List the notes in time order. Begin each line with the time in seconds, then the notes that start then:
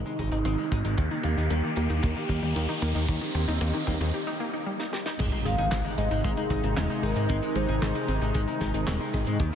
Already playing: C3 D#3 D#4, riser
0.06 G#3 D#4, closed hi-hat
0.19 G#1 D#4 G#4, kick, closed hi-hat
0.32 G#1 C4 D#4, closed hi-hat
0.45 G#1 G#3 C4, closed hi-hat, mid tom
0.58 G#3 D#4
0.72 G#1 G#3 D#4, kick, closed hi-hat
0.85 G#1 G#3 D#4, closed hi-hat
0.98 D#2 D#3 A#3 G4, kick, closed hi-hat, mid tom
1.11 D#3 D#4
1.24 D#2 A#3, closed hi-hat, mid tom
1.37 D#2 D#4, closed hi-hat
1.50 D#2 D#3 G3, closed hi-hat, mid tom
1.64 D#3 D#4
1.76 D#2 A#3 G4, closed hi-hat, mid tom
1.90 D#2 D#3 D#4, closed hi-hat
2.03 D#2 D#3 A#3, kick, closed hi-hat, mid tom
2.16 D#3 D#4, closed hi-hat
2.29 D#2 G3 A#3, kick, closed hi-hat, mid tom
2.43 D#2 G3 D#4, closed hi-hat
2.56 D#2 D#3 G4, closed hi-hat, mid tom
2.69 D#3 D#4
2.82 D#2 A#3, closed hi-hat, mid tom
2.95 D#2 D#3 D#4, closed hi-hat
3.08 D#2 D#3 G3 C4, kick, closed hi-hat, mid tom
3.21 D#3 D#4, closed hi-hat, mid tom
3.35 D#2 A#3 G4, closed hi-hat, mid tom
3.48 D#2 D#4, closed hi-hat, mid tom
3.61 D#2 D#3 A#3, closed hi-hat, mid tom
3.74 D#3 D#4, mid tom
3.87 D#2 G3 A#3, kick, closed hi-hat, mid tom
4.00 D#2 D#3 D#4, closed hi-hat, mid tom
4.14 G4
4.27 D#4
4.40 A#3
4.53 D#4
4.66 G3
4.79 D#4, snare
4.93 G4, snare
5.06 D#4, snare
5.19 G#1 C3 D#3 G#3 D#4, kick, closed hi-hat, crash, impact
5.32 G#3 D#4
5.45 G#1 D#4 G#4 F5, closed hi-hat
5.58 G#1 D#4 G#4, closed hi-hat
5.71 G#1 G#3 C4, snare, clap, closed hi-hat
5.85 G#3 D#4
5.97 G#1 G#3 D#4 D#5, closed hi-hat
6.11 G#1 G#3 D#4, closed hi-hat
6.24 G#1 G#3 G#4, kick, closed hi-hat
6.37 G#3 D#4, closed hi-hat
6.50 G#1 C4 D#4, kick, closed hi-hat
6.63 G#1 C4 D#4, closed hi-hat
6.77 D#1 G#3, snare, clap, closed hi-hat
6.90 G#3 D#4
7.03 G#1 D#4 G#4 A#4, open hi-hat
7.16 G#2 G#3 D#4, closed hi-hat
7.29 G#1 G#3 C4, kick, closed hi-hat
7.42 G#3 D#4, closed hi-hat
7.55 G#1 G#3 D#4 C5, closed hi-hat
7.68 G#1 D#4 G#4, closed hi-hat
7.82 G#1 G#3 G#4, snare, clap, closed hi-hat
7.95 G#3 D#4, closed hi-hat
8.08 G#1 C4 D#4, closed hi-hat
8.21 G#1 G#3 D#4, closed hi-hat
8.34 G#1 G#3, kick, closed hi-hat
8.48 G#3 D#4, closed hi-hat
8.61 G#1 D#4 G#4, kick, snare, closed hi-hat
8.74 G#1 C4 D#4, closed hi-hat
8.87 D#1 G#3 C4, snare, clap, closed hi-hat
9.00 G#3 D#4
9.13 G#1 G#3 D#4, kick, open hi-hat
9.27 G#2 G#3 D#4, closed hi-hat
9.40 D#2 D#3 G3 A#3 G4, kick, closed hi-hat